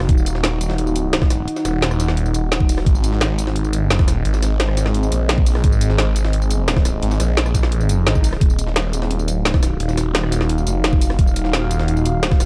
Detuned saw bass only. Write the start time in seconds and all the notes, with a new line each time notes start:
0.09 D#1
1.65 D#1
2.86 G#1
3.85 F#1
4.07 E1
4.25 G#1
5.12 A#1
5.64 G#1
7.03 G#1
7.20 A#1
8.07 G#1
8.41 D#1
9.40 C#1
9.62 B0
9.80 D#1
10.67 F1
11.19 D#1
12.16 D1
12.43 C#1